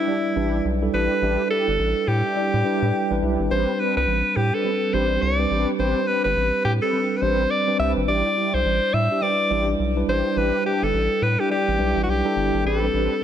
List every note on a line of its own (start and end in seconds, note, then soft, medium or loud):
0.00 0.07 G3 medium
0.00 0.07 D4 medium
0.00 0.13 D4 medium
0.00 0.08 E4 medium
0.00 0.13 E4 medium
0.00 0.67 E4 medium
0.00 0.13 G4 medium
0.00 0.37 B4 medium
0.07 0.32 G3 medium
0.07 0.32 D4 medium
0.07 0.32 E4 medium
0.07 0.32 D5 medium
0.36 0.60 A1 medium
0.36 0.72 G3 medium
0.36 0.57 D4 medium
0.36 0.72 D4 medium
0.36 0.57 E4 medium
0.36 0.72 E4 medium
0.36 0.57 G4 medium
0.36 0.73 B4 medium
0.65 0.89 B1 loud
0.81 1.15 G3 medium
0.81 1.15 D4 medium
0.81 1.16 E4 medium
0.81 1.16 A4 medium
0.93 1.08 A1 medium
0.93 1.14 D4 medium
0.93 1.14 E4 medium
0.93 1.14 G4 medium
0.93 1.47 B4 loud
1.21 1.37 A1 loud
1.21 2.16 G3 medium
1.21 1.42 D4 medium
1.21 2.16 D4 medium
1.21 1.42 E4 medium
1.21 2.16 E4 medium
1.21 1.43 G4 loud
1.21 2.16 B4 medium
1.50 1.71 D4 medium
1.50 1.71 E4 medium
1.50 1.71 G4 medium
1.50 2.09 A4 loud
1.68 1.77 G1 medium
1.79 1.94 A1 loud
2.07 2.22 A2 loud
2.07 3.22 G4 medium
2.25 2.41 D4 medium
2.25 2.41 E4 medium
2.25 2.41 G4 medium
2.36 2.60 G3 medium
2.36 2.60 D4 medium
2.36 2.61 E4 medium
2.36 2.61 D5 medium
2.54 2.63 A2 medium
2.64 3.00 G3 medium
2.64 3.01 D4 medium
2.64 2.85 D4 medium
2.64 3.01 E4 medium
2.64 2.85 E4 medium
2.64 2.86 G4 medium
2.64 3.01 B4 medium
2.82 2.92 A2 medium
2.93 3.20 G5 medium
3.10 3.20 A1 medium
3.10 3.44 G3 medium
3.10 3.44 D4 medium
3.10 3.44 E4 medium
3.10 3.45 B4 loud
3.21 3.37 B1 medium
3.21 3.42 D4 medium
3.21 3.42 E4 medium
3.21 3.43 G4 medium
3.21 3.49 E5 medium
3.39 3.49 G#1 medium
3.50 3.65 A1 loud
3.50 4.45 G3 medium
3.50 3.71 C4 medium
3.50 4.45 C4 medium
3.50 3.71 D4 medium
3.50 4.45 D4 medium
3.50 3.71 G4 medium
3.50 3.71 B4 medium
3.50 4.45 B4 medium
3.50 3.81 C5 medium
3.79 4.00 C4 medium
3.79 4.00 D4 medium
3.79 4.00 G4 medium
3.79 4.00 B4 medium
3.79 3.96 B4 medium
3.97 4.06 C2 medium
3.97 4.38 B4 medium
4.07 4.22 A1 loud
4.36 4.51 A2 loud
4.36 4.55 G4 medium
4.53 4.70 C4 medium
4.53 4.70 D4 medium
4.53 4.70 G4 medium
4.53 4.95 A4 medium
4.53 4.70 B4 medium
4.64 4.89 G3 medium
4.64 4.89 C4 medium
4.64 4.89 D4 medium
4.64 4.90 B4 medium
4.93 5.18 A1 medium
4.93 5.29 G3 medium
4.93 5.14 C4 medium
4.93 5.29 C4 medium
4.93 5.14 D4 medium
4.93 5.30 D4 medium
4.93 5.14 G4 medium
4.93 5.30 G4 medium
4.93 5.14 B4 medium
4.93 5.23 C5 medium
5.22 5.46 C2 loud
5.22 5.39 C#5 medium
5.39 5.72 G3 medium
5.39 5.73 C4 medium
5.39 5.73 D4 medium
5.39 5.73 B4 medium
5.39 5.68 D5 medium
5.50 5.65 A1 medium
5.50 5.71 C4 medium
5.50 5.71 D4 medium
5.50 5.71 G4 medium
5.50 5.71 B4 medium
5.79 5.94 A1 loud
5.79 6.73 G3 medium
5.79 6.73 C4 medium
5.79 6.00 C4 medium
5.79 6.00 D4 medium
5.79 6.73 D4 medium
5.79 6.00 G4 medium
5.79 6.00 B4 medium
5.79 6.74 B4 medium
5.79 6.09 C5 medium
6.07 6.28 C4 medium
6.07 6.28 D4 medium
6.07 6.28 G4 medium
6.07 6.24 B4 medium
6.07 6.28 B4 medium
6.24 6.34 G1 medium
6.24 6.62 B4 loud
6.36 6.51 A1 medium
6.65 6.79 A2 loud
6.65 6.73 G4 medium
6.82 6.98 C4 medium
6.82 6.98 D4 medium
6.82 6.98 G4 medium
6.82 7.19 A4 medium
6.82 6.98 B4 medium
6.93 7.17 G3 medium
6.93 7.18 C4 medium
6.93 7.18 D4 medium
6.93 7.18 B4 medium
7.17 7.24 B4 medium
7.21 7.46 A1 medium
7.21 7.58 G3 medium
7.21 7.42 C4 medium
7.21 7.58 C4 medium
7.21 7.42 D4 medium
7.21 7.58 D4 medium
7.21 7.42 G4 medium
7.21 7.43 B4 medium
7.21 7.52 C5 loud
7.21 7.58 C5 medium
7.50 7.79 D5 medium
7.67 8.01 G3 medium
7.67 8.01 C4 medium
7.67 8.01 D4 medium
7.67 8.01 B4 medium
7.79 7.94 C2 medium
7.79 8.00 C4 medium
7.79 8.00 D4 medium
7.79 8.00 G4 medium
7.79 8.00 B4 medium
7.79 7.92 E5 medium
7.97 8.06 G#1 medium
8.07 8.22 A1 loud
8.07 9.02 G3 medium
8.07 8.28 D4 medium
8.07 9.02 D4 medium
8.07 8.28 E4 medium
8.07 9.02 E4 medium
8.07 8.28 G4 medium
8.07 9.02 D5 medium
8.07 8.55 D5 medium
8.36 8.57 D4 medium
8.36 8.57 E4 medium
8.36 8.57 G4 medium
8.54 8.63 B1 medium
8.54 8.95 C5 loud
8.65 8.79 A1 loud
8.93 9.08 A2 loud
8.93 9.24 E5 medium
9.11 9.27 D4 medium
9.11 9.27 E4 medium
9.11 9.27 G4 medium
9.21 9.46 G3 medium
9.21 9.46 D4 medium
9.21 9.46 E4 medium
9.21 9.46 B4 medium
9.21 9.68 D5 loud
9.50 9.75 A1 medium
9.50 9.86 G3 medium
9.50 9.86 D4 medium
9.50 9.71 D4 medium
9.50 9.71 E4 medium
9.50 9.87 E4 medium
9.50 9.71 G4 medium
9.50 9.87 D5 medium
9.79 10.03 B1 medium
9.96 10.30 G3 medium
9.96 10.30 D4 medium
9.96 10.30 E4 medium
9.96 10.30 B4 medium
10.07 10.22 A1 medium
10.07 10.28 D4 medium
10.07 10.28 E4 medium
10.07 10.28 G4 medium
10.07 10.39 C5 medium
10.36 10.51 A1 loud
10.36 11.30 G3 medium
10.36 10.57 D4 medium
10.36 11.31 D4 medium
10.36 10.57 E4 medium
10.36 11.31 E4 medium
10.36 10.57 G4 loud
10.36 11.31 B4 medium
10.36 10.65 B4 loud
10.65 10.85 D4 medium
10.65 10.86 E4 medium
10.65 10.86 G4 medium
10.65 10.85 G4 medium
10.82 10.92 G1 medium
10.82 11.25 A4 loud
10.93 11.08 A1 loud
11.22 11.37 A2 loud
11.22 11.41 B4 medium
11.39 11.55 D4 medium
11.39 11.56 E4 medium
11.39 11.56 G4 medium
11.39 11.51 G4 medium
11.50 11.74 G3 medium
11.50 11.75 D4 medium
11.50 11.75 E4 medium
11.50 11.99 G4 medium
11.50 11.75 D5 medium
11.68 11.77 A1 medium
11.78 11.94 B1 medium
11.78 12.15 G3 medium
11.78 12.15 D4 medium
11.78 12.00 D4 medium
11.78 12.00 E4 medium
11.78 12.15 E4 medium
11.78 12.00 G4 medium
11.78 12.15 B4 medium
11.96 12.06 A1 medium
12.03 12.11 F#4 medium
12.08 12.22 B1 loud
12.08 12.66 G4 medium
12.24 12.58 G3 loud
12.24 12.58 D4 medium
12.24 12.59 E4 medium
12.24 12.59 A4 loud
12.36 12.51 G1 medium
12.36 12.57 D4 medium
12.36 12.57 E4 medium
12.36 12.57 G4 medium
12.54 12.63 G#1 medium
12.65 12.89 A1 loud
12.65 12.85 C4 medium
12.65 12.85 D4 medium
12.65 12.86 G4 medium
12.65 13.24 A4 medium
12.65 12.86 B4 loud
12.82 13.24 G3 medium
12.82 13.24 C4 medium
12.82 13.24 D4 medium
12.82 13.24 B4 medium
12.93 13.08 A1 loud
12.93 13.14 C4 medium
12.93 13.14 D4 medium
12.93 13.14 G4 medium
12.93 13.14 B4 medium